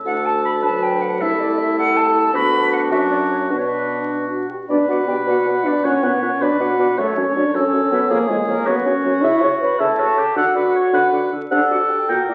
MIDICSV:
0, 0, Header, 1, 6, 480
1, 0, Start_track
1, 0, Key_signature, 2, "minor"
1, 0, Tempo, 382653
1, 59, Time_signature, 6, 3, 24, 8
1, 3898, Tempo, 397351
1, 5818, Tempo, 377596
1, 11583, Key_signature, 2, "major"
1, 13018, Tempo, 385356
1, 15490, End_track
2, 0, Start_track
2, 0, Title_t, "Flute"
2, 0, Program_c, 0, 73
2, 68, Note_on_c, 0, 78, 100
2, 314, Note_on_c, 0, 81, 100
2, 333, Note_off_c, 0, 78, 0
2, 546, Note_off_c, 0, 81, 0
2, 554, Note_on_c, 0, 83, 85
2, 629, Note_off_c, 0, 83, 0
2, 798, Note_on_c, 0, 81, 92
2, 1035, Note_on_c, 0, 79, 87
2, 1054, Note_off_c, 0, 81, 0
2, 1267, Note_on_c, 0, 78, 96
2, 1286, Note_off_c, 0, 79, 0
2, 1509, Note_on_c, 0, 76, 106
2, 1528, Note_off_c, 0, 78, 0
2, 1752, Note_on_c, 0, 74, 96
2, 1770, Note_off_c, 0, 76, 0
2, 1976, Note_on_c, 0, 76, 95
2, 1995, Note_off_c, 0, 74, 0
2, 2222, Note_off_c, 0, 76, 0
2, 2231, Note_on_c, 0, 78, 115
2, 2461, Note_on_c, 0, 81, 108
2, 2480, Note_off_c, 0, 78, 0
2, 2923, Note_off_c, 0, 81, 0
2, 2931, Note_on_c, 0, 83, 127
2, 3401, Note_off_c, 0, 83, 0
2, 3413, Note_on_c, 0, 78, 104
2, 3489, Note_off_c, 0, 78, 0
2, 3649, Note_on_c, 0, 76, 114
2, 3724, Note_off_c, 0, 76, 0
2, 3885, Note_on_c, 0, 74, 91
2, 3958, Note_off_c, 0, 74, 0
2, 4135, Note_on_c, 0, 73, 77
2, 4208, Note_off_c, 0, 73, 0
2, 4383, Note_on_c, 0, 71, 75
2, 4466, Note_on_c, 0, 73, 66
2, 4485, Note_off_c, 0, 71, 0
2, 4560, Note_on_c, 0, 71, 78
2, 4578, Note_off_c, 0, 73, 0
2, 5099, Note_off_c, 0, 71, 0
2, 5815, Note_on_c, 0, 74, 82
2, 5891, Note_off_c, 0, 74, 0
2, 6065, Note_on_c, 0, 78, 67
2, 6141, Note_off_c, 0, 78, 0
2, 6304, Note_on_c, 0, 79, 64
2, 6381, Note_off_c, 0, 79, 0
2, 6553, Note_on_c, 0, 78, 73
2, 7041, Note_on_c, 0, 74, 71
2, 7060, Note_off_c, 0, 78, 0
2, 7288, Note_on_c, 0, 73, 76
2, 7308, Note_off_c, 0, 74, 0
2, 7519, Note_off_c, 0, 73, 0
2, 7527, Note_on_c, 0, 71, 67
2, 7771, Note_on_c, 0, 73, 69
2, 7790, Note_off_c, 0, 71, 0
2, 8005, Note_on_c, 0, 74, 70
2, 8024, Note_off_c, 0, 73, 0
2, 8242, Note_on_c, 0, 78, 68
2, 8261, Note_off_c, 0, 74, 0
2, 8732, Note_on_c, 0, 69, 80
2, 8751, Note_off_c, 0, 78, 0
2, 8971, Note_on_c, 0, 73, 73
2, 8990, Note_off_c, 0, 69, 0
2, 9215, Note_on_c, 0, 74, 67
2, 9234, Note_off_c, 0, 73, 0
2, 9457, Note_on_c, 0, 73, 80
2, 9476, Note_off_c, 0, 74, 0
2, 9908, Note_off_c, 0, 73, 0
2, 9916, Note_on_c, 0, 71, 76
2, 9992, Note_off_c, 0, 71, 0
2, 10158, Note_on_c, 0, 70, 85
2, 10234, Note_off_c, 0, 70, 0
2, 10393, Note_on_c, 0, 68, 72
2, 10469, Note_off_c, 0, 68, 0
2, 10624, Note_on_c, 0, 70, 73
2, 10865, Note_on_c, 0, 71, 76
2, 10884, Note_off_c, 0, 70, 0
2, 11112, Note_on_c, 0, 73, 74
2, 11131, Note_off_c, 0, 71, 0
2, 11585, Note_on_c, 0, 76, 85
2, 11604, Note_off_c, 0, 73, 0
2, 11828, Note_on_c, 0, 85, 75
2, 11847, Note_off_c, 0, 76, 0
2, 12064, Note_off_c, 0, 85, 0
2, 12072, Note_on_c, 0, 83, 75
2, 12302, Note_on_c, 0, 81, 90
2, 12321, Note_off_c, 0, 83, 0
2, 13012, Note_off_c, 0, 81, 0
2, 13019, Note_on_c, 0, 78, 79
2, 14186, Note_off_c, 0, 78, 0
2, 14451, Note_on_c, 0, 74, 67
2, 14671, Note_off_c, 0, 74, 0
2, 14694, Note_on_c, 0, 78, 65
2, 14768, Note_off_c, 0, 78, 0
2, 14931, Note_on_c, 0, 79, 59
2, 15170, Note_on_c, 0, 78, 66
2, 15189, Note_off_c, 0, 79, 0
2, 15413, Note_off_c, 0, 78, 0
2, 15420, Note_on_c, 0, 76, 51
2, 15490, Note_off_c, 0, 76, 0
2, 15490, End_track
3, 0, Start_track
3, 0, Title_t, "Clarinet"
3, 0, Program_c, 1, 71
3, 65, Note_on_c, 1, 62, 64
3, 743, Note_off_c, 1, 62, 0
3, 786, Note_on_c, 1, 62, 58
3, 1509, Note_on_c, 1, 64, 69
3, 1528, Note_off_c, 1, 62, 0
3, 2923, Note_off_c, 1, 64, 0
3, 2930, Note_on_c, 1, 62, 89
3, 4343, Note_off_c, 1, 62, 0
3, 4364, Note_on_c, 1, 62, 65
3, 5550, Note_off_c, 1, 62, 0
3, 5812, Note_on_c, 1, 74, 62
3, 5923, Note_off_c, 1, 74, 0
3, 6063, Note_on_c, 1, 74, 58
3, 6172, Note_off_c, 1, 74, 0
3, 6300, Note_on_c, 1, 74, 50
3, 6410, Note_off_c, 1, 74, 0
3, 6550, Note_on_c, 1, 74, 51
3, 6659, Note_off_c, 1, 74, 0
3, 6792, Note_on_c, 1, 74, 44
3, 6901, Note_off_c, 1, 74, 0
3, 7047, Note_on_c, 1, 74, 52
3, 7153, Note_off_c, 1, 74, 0
3, 7286, Note_on_c, 1, 78, 63
3, 7392, Note_off_c, 1, 78, 0
3, 7517, Note_on_c, 1, 78, 63
3, 7625, Note_off_c, 1, 78, 0
3, 7754, Note_on_c, 1, 78, 55
3, 7863, Note_off_c, 1, 78, 0
3, 7999, Note_on_c, 1, 74, 53
3, 8107, Note_off_c, 1, 74, 0
3, 8233, Note_on_c, 1, 74, 57
3, 8343, Note_off_c, 1, 74, 0
3, 8479, Note_on_c, 1, 74, 64
3, 8588, Note_off_c, 1, 74, 0
3, 8720, Note_on_c, 1, 73, 65
3, 8829, Note_off_c, 1, 73, 0
3, 8966, Note_on_c, 1, 73, 53
3, 9073, Note_off_c, 1, 73, 0
3, 9199, Note_on_c, 1, 73, 54
3, 9306, Note_off_c, 1, 73, 0
3, 9440, Note_on_c, 1, 73, 65
3, 9546, Note_off_c, 1, 73, 0
3, 9674, Note_on_c, 1, 73, 51
3, 9780, Note_off_c, 1, 73, 0
3, 9909, Note_on_c, 1, 73, 68
3, 10016, Note_off_c, 1, 73, 0
3, 10139, Note_on_c, 1, 73, 69
3, 10248, Note_off_c, 1, 73, 0
3, 10385, Note_on_c, 1, 73, 59
3, 10492, Note_off_c, 1, 73, 0
3, 10629, Note_on_c, 1, 73, 59
3, 10735, Note_off_c, 1, 73, 0
3, 10866, Note_on_c, 1, 73, 65
3, 10973, Note_off_c, 1, 73, 0
3, 11103, Note_on_c, 1, 73, 51
3, 11211, Note_off_c, 1, 73, 0
3, 11344, Note_on_c, 1, 73, 64
3, 11452, Note_off_c, 1, 73, 0
3, 11586, Note_on_c, 1, 76, 86
3, 11752, Note_off_c, 1, 76, 0
3, 11827, Note_on_c, 1, 73, 59
3, 11933, Note_off_c, 1, 73, 0
3, 12304, Note_on_c, 1, 76, 70
3, 12470, Note_off_c, 1, 76, 0
3, 12538, Note_on_c, 1, 73, 51
3, 12646, Note_off_c, 1, 73, 0
3, 12775, Note_on_c, 1, 69, 53
3, 12884, Note_off_c, 1, 69, 0
3, 13023, Note_on_c, 1, 78, 82
3, 13187, Note_off_c, 1, 78, 0
3, 13254, Note_on_c, 1, 74, 56
3, 13361, Note_off_c, 1, 74, 0
3, 13730, Note_on_c, 1, 78, 71
3, 13897, Note_off_c, 1, 78, 0
3, 13970, Note_on_c, 1, 74, 49
3, 14078, Note_off_c, 1, 74, 0
3, 14215, Note_on_c, 1, 69, 56
3, 14321, Note_off_c, 1, 69, 0
3, 14447, Note_on_c, 1, 78, 74
3, 14613, Note_off_c, 1, 78, 0
3, 14687, Note_on_c, 1, 74, 53
3, 14794, Note_off_c, 1, 74, 0
3, 15163, Note_on_c, 1, 79, 58
3, 15337, Note_off_c, 1, 79, 0
3, 15417, Note_on_c, 1, 74, 40
3, 15490, Note_off_c, 1, 74, 0
3, 15490, End_track
4, 0, Start_track
4, 0, Title_t, "Oboe"
4, 0, Program_c, 2, 68
4, 52, Note_on_c, 2, 69, 60
4, 737, Note_off_c, 2, 69, 0
4, 781, Note_on_c, 2, 71, 69
4, 1520, Note_on_c, 2, 69, 63
4, 1539, Note_off_c, 2, 71, 0
4, 2227, Note_off_c, 2, 69, 0
4, 2234, Note_on_c, 2, 69, 75
4, 2944, Note_on_c, 2, 66, 75
4, 2963, Note_off_c, 2, 69, 0
4, 3654, Note_off_c, 2, 66, 0
4, 3661, Note_on_c, 2, 66, 87
4, 4364, Note_off_c, 2, 66, 0
4, 4375, Note_on_c, 2, 66, 59
4, 5555, Note_off_c, 2, 66, 0
4, 5813, Note_on_c, 2, 71, 73
4, 7273, Note_on_c, 2, 73, 76
4, 7292, Note_off_c, 2, 71, 0
4, 8004, Note_on_c, 2, 71, 70
4, 8023, Note_off_c, 2, 73, 0
4, 8722, Note_on_c, 2, 73, 72
4, 8741, Note_off_c, 2, 71, 0
4, 9441, Note_on_c, 2, 69, 66
4, 9460, Note_off_c, 2, 73, 0
4, 10138, Note_off_c, 2, 69, 0
4, 10146, Note_on_c, 2, 68, 75
4, 10862, Note_on_c, 2, 66, 76
4, 10881, Note_off_c, 2, 68, 0
4, 12299, Note_on_c, 2, 64, 66
4, 12318, Note_off_c, 2, 66, 0
4, 12546, Note_on_c, 2, 66, 70
4, 12565, Note_off_c, 2, 64, 0
4, 12786, Note_on_c, 2, 67, 65
4, 12805, Note_off_c, 2, 66, 0
4, 13023, Note_off_c, 2, 67, 0
4, 13032, Note_on_c, 2, 69, 69
4, 13135, Note_off_c, 2, 69, 0
4, 13268, Note_on_c, 2, 71, 72
4, 13493, Note_off_c, 2, 71, 0
4, 13504, Note_on_c, 2, 73, 68
4, 13742, Note_on_c, 2, 71, 70
4, 13761, Note_off_c, 2, 73, 0
4, 14205, Note_off_c, 2, 71, 0
4, 14460, Note_on_c, 2, 69, 66
4, 15178, Note_on_c, 2, 70, 59
4, 15196, Note_off_c, 2, 69, 0
4, 15490, Note_off_c, 2, 70, 0
4, 15490, End_track
5, 0, Start_track
5, 0, Title_t, "French horn"
5, 0, Program_c, 3, 60
5, 60, Note_on_c, 3, 57, 68
5, 790, Note_on_c, 3, 54, 62
5, 809, Note_off_c, 3, 57, 0
5, 1507, Note_on_c, 3, 57, 76
5, 1525, Note_off_c, 3, 54, 0
5, 2932, Note_off_c, 3, 57, 0
5, 2940, Note_on_c, 3, 59, 91
5, 3655, Note_on_c, 3, 61, 74
5, 3674, Note_off_c, 3, 59, 0
5, 4375, Note_on_c, 3, 62, 66
5, 4393, Note_off_c, 3, 61, 0
5, 5047, Note_off_c, 3, 62, 0
5, 5093, Note_on_c, 3, 62, 58
5, 5335, Note_on_c, 3, 66, 66
5, 5353, Note_off_c, 3, 62, 0
5, 5569, Note_off_c, 3, 66, 0
5, 5576, Note_on_c, 3, 67, 55
5, 5684, Note_off_c, 3, 67, 0
5, 5815, Note_on_c, 3, 62, 95
5, 6043, Note_off_c, 3, 62, 0
5, 6057, Note_on_c, 3, 66, 85
5, 6297, Note_off_c, 3, 66, 0
5, 6303, Note_on_c, 3, 67, 72
5, 6413, Note_off_c, 3, 67, 0
5, 6544, Note_on_c, 3, 66, 91
5, 7038, Note_on_c, 3, 62, 85
5, 7057, Note_off_c, 3, 66, 0
5, 7279, Note_on_c, 3, 61, 106
5, 7298, Note_off_c, 3, 62, 0
5, 7520, Note_on_c, 3, 59, 87
5, 7539, Note_off_c, 3, 61, 0
5, 7746, Note_off_c, 3, 59, 0
5, 7754, Note_on_c, 3, 61, 77
5, 7996, Note_on_c, 3, 62, 86
5, 8015, Note_off_c, 3, 61, 0
5, 8233, Note_off_c, 3, 62, 0
5, 8241, Note_on_c, 3, 66, 87
5, 8714, Note_off_c, 3, 66, 0
5, 8721, Note_on_c, 3, 57, 104
5, 8954, Note_off_c, 3, 57, 0
5, 8961, Note_on_c, 3, 61, 85
5, 9197, Note_off_c, 3, 61, 0
5, 9202, Note_on_c, 3, 62, 83
5, 9434, Note_off_c, 3, 62, 0
5, 9440, Note_on_c, 3, 61, 86
5, 9907, Note_on_c, 3, 59, 90
5, 9926, Note_off_c, 3, 61, 0
5, 10142, Note_off_c, 3, 59, 0
5, 10150, Note_on_c, 3, 58, 105
5, 10380, Note_on_c, 3, 56, 91
5, 10399, Note_off_c, 3, 58, 0
5, 10612, Note_off_c, 3, 56, 0
5, 10620, Note_on_c, 3, 58, 84
5, 10855, Note_off_c, 3, 58, 0
5, 10864, Note_on_c, 3, 59, 90
5, 11094, Note_off_c, 3, 59, 0
5, 11102, Note_on_c, 3, 61, 94
5, 11583, Note_on_c, 3, 64, 109
5, 11602, Note_off_c, 3, 61, 0
5, 11819, Note_on_c, 3, 73, 94
5, 11838, Note_off_c, 3, 64, 0
5, 12064, Note_on_c, 3, 71, 95
5, 12083, Note_off_c, 3, 73, 0
5, 12298, Note_off_c, 3, 71, 0
5, 12306, Note_on_c, 3, 69, 92
5, 13008, Note_off_c, 3, 69, 0
5, 13021, Note_on_c, 3, 66, 98
5, 14187, Note_off_c, 3, 66, 0
5, 14449, Note_on_c, 3, 62, 88
5, 14555, Note_off_c, 3, 62, 0
5, 14692, Note_on_c, 3, 66, 73
5, 14798, Note_off_c, 3, 66, 0
5, 14931, Note_on_c, 3, 67, 64
5, 15039, Note_off_c, 3, 67, 0
5, 15168, Note_on_c, 3, 66, 69
5, 15408, Note_off_c, 3, 66, 0
5, 15415, Note_on_c, 3, 64, 67
5, 15490, Note_off_c, 3, 64, 0
5, 15490, End_track
6, 0, Start_track
6, 0, Title_t, "Bassoon"
6, 0, Program_c, 4, 70
6, 64, Note_on_c, 4, 38, 79
6, 1508, Note_on_c, 4, 36, 76
6, 1527, Note_off_c, 4, 38, 0
6, 2922, Note_off_c, 4, 36, 0
6, 2930, Note_on_c, 4, 38, 91
6, 3637, Note_off_c, 4, 38, 0
6, 3649, Note_on_c, 4, 42, 93
6, 4377, Note_on_c, 4, 47, 72
6, 4395, Note_off_c, 4, 42, 0
6, 5580, Note_off_c, 4, 47, 0
6, 5815, Note_on_c, 4, 47, 63
6, 5925, Note_off_c, 4, 47, 0
6, 6056, Note_on_c, 4, 47, 60
6, 6166, Note_off_c, 4, 47, 0
6, 6297, Note_on_c, 4, 47, 59
6, 6408, Note_off_c, 4, 47, 0
6, 6545, Note_on_c, 4, 47, 74
6, 6655, Note_off_c, 4, 47, 0
6, 6784, Note_on_c, 4, 47, 60
6, 6895, Note_off_c, 4, 47, 0
6, 7029, Note_on_c, 4, 47, 57
6, 7139, Note_off_c, 4, 47, 0
6, 7276, Note_on_c, 4, 46, 67
6, 7384, Note_off_c, 4, 46, 0
6, 7511, Note_on_c, 4, 46, 65
6, 7620, Note_off_c, 4, 46, 0
6, 7757, Note_on_c, 4, 46, 60
6, 7865, Note_off_c, 4, 46, 0
6, 7993, Note_on_c, 4, 47, 64
6, 8103, Note_off_c, 4, 47, 0
6, 8235, Note_on_c, 4, 47, 65
6, 8345, Note_off_c, 4, 47, 0
6, 8478, Note_on_c, 4, 47, 66
6, 8587, Note_off_c, 4, 47, 0
6, 8720, Note_on_c, 4, 42, 66
6, 8829, Note_off_c, 4, 42, 0
6, 8961, Note_on_c, 4, 42, 69
6, 9069, Note_off_c, 4, 42, 0
6, 9198, Note_on_c, 4, 42, 58
6, 9306, Note_off_c, 4, 42, 0
6, 9439, Note_on_c, 4, 42, 68
6, 9545, Note_off_c, 4, 42, 0
6, 9671, Note_on_c, 4, 42, 68
6, 9778, Note_off_c, 4, 42, 0
6, 9910, Note_on_c, 4, 42, 64
6, 10017, Note_off_c, 4, 42, 0
6, 10148, Note_on_c, 4, 41, 82
6, 10255, Note_off_c, 4, 41, 0
6, 10389, Note_on_c, 4, 41, 75
6, 10495, Note_off_c, 4, 41, 0
6, 10622, Note_on_c, 4, 41, 63
6, 10729, Note_off_c, 4, 41, 0
6, 10866, Note_on_c, 4, 42, 69
6, 10973, Note_off_c, 4, 42, 0
6, 11109, Note_on_c, 4, 42, 64
6, 11216, Note_off_c, 4, 42, 0
6, 11346, Note_on_c, 4, 42, 69
6, 11454, Note_off_c, 4, 42, 0
6, 11590, Note_on_c, 4, 49, 78
6, 11696, Note_off_c, 4, 49, 0
6, 11826, Note_on_c, 4, 49, 59
6, 11933, Note_off_c, 4, 49, 0
6, 12301, Note_on_c, 4, 49, 87
6, 12408, Note_off_c, 4, 49, 0
6, 12537, Note_on_c, 4, 49, 55
6, 12645, Note_off_c, 4, 49, 0
6, 12776, Note_on_c, 4, 49, 49
6, 12885, Note_off_c, 4, 49, 0
6, 13016, Note_on_c, 4, 50, 78
6, 13123, Note_off_c, 4, 50, 0
6, 13259, Note_on_c, 4, 50, 55
6, 13365, Note_off_c, 4, 50, 0
6, 13726, Note_on_c, 4, 50, 77
6, 13834, Note_off_c, 4, 50, 0
6, 13968, Note_on_c, 4, 50, 55
6, 14077, Note_off_c, 4, 50, 0
6, 14210, Note_on_c, 4, 50, 48
6, 14318, Note_off_c, 4, 50, 0
6, 14445, Note_on_c, 4, 48, 71
6, 14553, Note_off_c, 4, 48, 0
6, 14684, Note_on_c, 4, 48, 48
6, 14792, Note_off_c, 4, 48, 0
6, 15170, Note_on_c, 4, 46, 66
6, 15281, Note_off_c, 4, 46, 0
6, 15416, Note_on_c, 4, 46, 45
6, 15490, Note_off_c, 4, 46, 0
6, 15490, End_track
0, 0, End_of_file